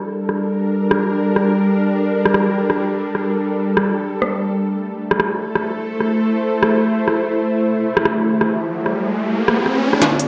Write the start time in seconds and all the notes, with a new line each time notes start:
Already playing: G3 D4 A4 A#4
0.29 cross-stick
0.91 cross-stick
1.36 cross-stick
2.25 cross-stick
2.34 cross-stick
2.70 cross-stick
3.15 cross-stick
3.77 cross-stick
4.22 cross-stick
4.31 A3
4.55 A4
4.65 E4
4.86 C5
5.11 cross-stick
5.20 cross-stick
5.55 cross-stick
6.00 cross-stick
6.63 cross-stick
7.08 cross-stick
7.16 riser
7.71 G4
7.97 cross-stick
8.05 cross-stick
8.41 cross-stick
8.86 cross-stick
9.48 cross-stick
9.66 cross-stick
9.93 cross-stick
10.01 G1 G3, snare, closed hi-hat, riser
10.19 closed hi-hat